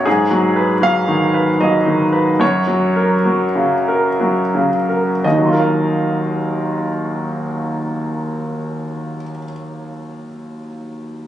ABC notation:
X:1
M:3/4
L:1/8
Q:1/4=60
K:Ebm
V:1 name="Grand piano"
A2 f2 e2 | d4- d z | [E,,E,G,FBef]6- | [E,,E,G,FBef]6 |]
V:2 name="Grand piano" clef=bass
(3A,, G, c (3G, E, c (3G, E, c | (3G,, G, B (3G, D, B (3G, D, B | z6 | z6 |]